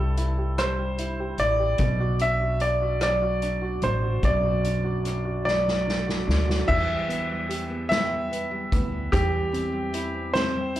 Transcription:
Already playing: C2 G2 G3 E4 G4 A4
0.17 E4, closed hi-hat
0.38 G4
0.58 G3 C5, cross-stick, closed hi-hat
0.79 G4
0.98 E4, closed hi-hat
1.20 G4
1.38 A1 E4 D5, closed hi-hat
1.60 G4
1.78 B1 B2, kick, closed hi-hat
2.00 F#4
2.19 D4 E5, closed hi-hat
2.41 F#4
2.60 D4 D5, closed hi-hat
2.82 F#4
3.01 F#3 D5, cross-stick, closed hi-hat
3.22 F#4
3.42 D4, closed hi-hat
3.62 F#4
3.82 A1 D4 C5, closed hi-hat
4.03 F#4
4.23 B1 F#2 D5, kick, closed hi-hat
4.44 F#4
4.64 D4, closed hi-hat
4.84 F#4
5.04 D4, cross-stick, closed hi-hat
5.25 F#4
5.45 F#3 D5, snare
5.66 F#4, snare
5.86 D4, snare
6.07 F#4, snare
6.27 D2 D4, snare
6.48 F#4, snare
6.67 E2 E3 G3 E4 E5, kick, crash
6.88 G3
7.08 B3, closed hi-hat
7.30 G3
7.49 E4 G4, closed hi-hat
7.70 B3
7.89 G3 B3 E4 E5, snare, closed hi-hat
8.10 G3
8.31 B3 B4, closed hi-hat
8.51 G3
8.72 D2 B3 E4, kick, closed hi-hat
8.92 B3
9.12 E2 E3 G3 E4 G4, kick, closed hi-hat
9.32 G3
9.52 C4, closed hi-hat
9.72 G3
9.93 E4, closed hi-hat
10.14 C4
10.34 G3 C4 E4 C5, snare, closed hi-hat
10.54 G3
10.75 C4 E4, closed hi-hat

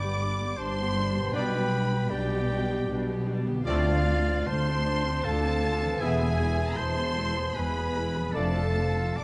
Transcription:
Already playing: G1 G2 G3 B3 D4 D5 B5 D6
0.02 B3 G4
0.22 G3 D4
0.41 B3 G4
0.57 G1 G2 G3 D4 C5 A5 C6
0.79 B3 G4
0.98 G3 D4
1.16 B2 B3 G4
1.21 G3
1.26 D4
1.30 B2 G3 B3 D4 G4 B4 D5 G5 B5
1.35 B1 D4 B4 B5
1.55 B3 G4
1.73 G3 D4
1.92 B3 G4
2.09 B1 B2 G3 D4 G4 D5 G5
2.31 B3 G4
2.49 G3 D4
2.70 B3 G4
2.88 B1 B2 G3 D4
3.07 B3 G4
3.25 G3 D4
3.46 D3 B3 G4
3.52 C4
3.57 F4
3.61 A2 F4 A4 D5 F5
3.66 D2 A3 C4 D4 F4 D5 F5
3.84 C4 D4
4.06 D4 F4
4.26 C4 D4
4.46 D2 D4 F4 C5 A5 C6
4.67 C4 D4
4.87 D4 F4
5.05 C4 D4
5.23 D2 D4 F4 A4 F5 A5
5.43 C4 D4
5.63 D4 F4
5.81 E3 C4 D4
5.87 B3
5.92 E4
5.99 E1 E2 E3 G#3 B3 E4 G#4 E5 G#5
6.20 B3 G#4
6.39 G#3 E4
6.58 B3 G#4
6.76 E1 E2 G#3 E4 C5 A5 C6
6.80 C5
6.96 B3 G#4
7.17 G#3 E4
7.36 B3 G#4
7.54 E1 E2 G#3 E4 B4 G#5 B5
7.59 B4
7.75 B3 G#4
7.95 G#3 E4
8.15 F3 B3 G#4
8.21 A3
8.25 D4
8.30 D4 A4 A5
8.34 F1 F2 F3 A3 D4 A4 D5 F5
8.55 A3 F4
8.76 F3 D4
8.99 A3 F4
9.16 F1 F2 D5 A5 D6
9.21 F3 D4

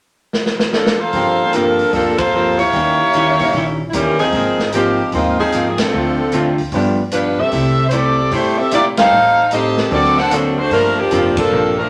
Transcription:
0.33 snare
0.46 snare
0.59 snare
0.73 F3 A#3 D4 A4, snare
0.86 snare
1.00 A#3 F4 A4 C5
1.13 G1 G2 F3 A#3 C4 D4 G4, kick, open hi-hat
1.17 C4
1.53 G2 F3 A#3 C4 D4 A4 A#4, closed hi-hat
1.79 open hi-hat
1.93 D2 G2 F3 A#3 D4 A4, kick, open hi-hat
1.97 C4
2.18 A#3 F4 A4 C5, kick, ride
2.34 G2 F3 A#3 C4
2.58 A#3 E4 G4 C#5, open hi-hat
2.73 D#2 D#3 E3 G3 A#3 C#4 D#4 G4, kick, open hi-hat
2.77 E4
3.13 D#3 G3 C#4 E4, closed hi-hat
3.39 A#2 E3 A#3 C#4 D#4 A#4, open hi-hat
3.53 A#1 D#3 G3 C#4, kick, open hi-hat
3.57 E4
3.90 D#2 D#3 E4, closed hi-hat
3.94 E3 G3 A#3 C#4 E4 G4
4.19 F3 C4 D#4 G#4, open hi-hat
4.32 G#1 G#2 F3 A#3 C4, kick, open hi-hat
4.59 snare
4.72 G#2 F3 A#3 C4 D#4 G4, closed hi-hat
5.12 D#2 G#2 F3 G#3 A#3 C4 D#4 F4, kick, open hi-hat
5.39 F3 C4 D#4 G#4
5.52 G#2 F3 A#3 C4, closed hi-hat
5.69 G#4
5.78 F3 C4 D4 A4, muted upright bass stroke, snare, ride
5.92 D2 D3 A3 C4 F4
6.32 D3 A3 C4 F4, closed hi-hat
6.58 D2, open hi-hat
6.72 G1 G2 F3 G3 A3 B3 D4 F4, kick, open hi-hat
6.76 D4
7.11 G2 F3 G3 B3 D4 F4 B4, closed hi-hat
7.39 G2 C4 G4 A4 E5
7.51 C2 C3 G3 A3 E4, kick, open hi-hat
7.88 C3 C5, closed hi-hat
7.92 G3 A3 C4 E4 G4 A4 D5
8.31 G1 C3 G3 A3 E4 G4 C5, kick, open hi-hat
8.58 C4 G4 A4 E5
8.71 C3 G3 A3 A#3 E4 G4 D5, closed hi-hat
8.97 G3 A3 C4 D#4 G4 A4 C5 F5, snare, ride
9.11 A1 A2 G3 C4 D#4
9.51 A2 G3 C4 D#4 G4 A4 D#5, closed hi-hat
9.77 snare
9.90 D2 D3 F#3 A#3 C4 D4 F#4 A4 D5, kick, open hi-hat
10.04 snare
10.18 D4 A4 C5 F#5, snare
10.31 D3 F#3 A#3 C4 D4 F#4 A4, closed hi-hat
10.59 A3 D4 F#4 C5
10.71 G1 G2 F3 A3 A#3 C4 D4 A#4, kick, open hi-hat
11.00 F3 A#3 D4 G4
11.11 F1 G2 F3 A#3 C4 D4 A4, closed hi-hat
11.37 F3 A#3 D4 A4, kick, ride
11.51 A#1 G2 F3 A#3 C4
11.78 F3 A3 D4 A#4

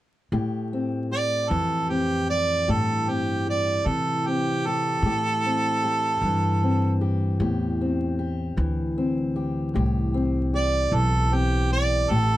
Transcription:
0.32 A2 G4
0.73 C4
1.11 G4 D5
1.49 F2 E3 A4
1.89 C4 G4
2.30 G4 D5
2.68 G2 A2 G4 A4
3.08 C4 G4
3.48 G4 D5
3.86 C3 E3 A4
4.27 C4 G4
4.66 G4 A4
5.02 A2 G4
5.45 C4
5.84 G4
6.22 G2 E3
6.63 C4
7.01 G4
7.40 E2 A2 G4
7.81 C4
8.19 G4
8.57 D2 E3
8.98 C4
9.36 G4
9.74 C2 A2 G4
10.14 C4
10.54 G4 D5
10.92 B1 E3 A4
11.32 C4 G4
11.71 G4 D5
12.10 A1 A2 G4 A4

